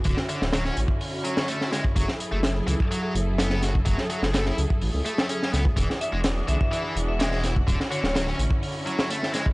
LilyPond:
<<
  \new Staff \with { instrumentName = "Vibraphone" } { \time 4/4 \key fis \minor \tempo 4 = 126 r1 | r1 | r1 | r8 e''16 r8. e''16 e''16 r8. e''16 e''16 r8. |
r8 cis''16 cis''16 r2. | }
  \new Staff \with { instrumentName = "String section" } { \time 4/4 \key fis \minor <d cis' e' fis'>1 | <fis gis' a'>1~ | <fis gis' a'>1 | <e d' fis'>1 |
<d cis' e'>1 | }
  \new Staff \with { instrumentName = "Distorted electric guitar" } { \clef bass \time 4/4 \key fis \minor d16 r16 d16 r16 fis16 cis'16 r4 fis8 a8 gis16 r16 | fis16 r8 a16 r8 e16 r16 fis16 fis16 r8 b8 fis'16 r16 | fis16 r16 fis16 r16 a16 e'16 r4 a8 cis'8 b16 r16 | e16 r8 gis16 r8 d16 r16 e16 e16 r8 gis8 e'16 r16 |
d16 r16 d16 r16 fis16 cis'16 r4 fis8 a8 gis16 r16 | }
  \new Staff \with { instrumentName = "Detuned saw bass" } { \clef bass \time 4/4 \key fis \minor d,,16 r8 d,,8 r16 a,,16 r2 r16 | fis,,16 r8 fis,,8 r16 cis,16 r8. fis,,4~ fis,,16 r16 | fis,,16 r8 fis,,8 r16 cis,16 r16 a,,16 cis,16 r4 cis,16 r16 | e,,16 r8 e,,8 r16 b,,16 r8. e,,4~ e,,16 r16 |
d,,16 r8 d,,8 r16 a,,16 r2 r16 | }
  \new DrumStaff \with { instrumentName = "Drums" } \drummode { \time 4/4 <hh bd>16 sn16 hh16 sn16 <hh sn>16 sn16 hh16 bd16 hho8 hh16 sn16 hh16 sn16 <hh sn>16 bd16 | <hh bd>16 sn16 hh8 <hh sn>8 hh16 bd16 hh8 hh8 <hh sn>16 sn16 <hh sn>16 bd16 | <hh bd>16 sn16 hh16 sn16 <hh sn>16 sn16 hh16 bd16 hho8 hh16 sn16 hh16 sn16 <hh sn>16 bd16 | <hh bd>16 sn16 hh8 <hh sn>8 hh16 bd16 hh8 hh8 <hh sn>16 sn16 <hh sn>16 bd16 |
<hh bd>16 sn16 hh16 sn16 <hh sn>16 sn16 hh16 bd16 hho8 hh16 sn16 hh16 sn16 <hh sn>16 bd16 | }
>>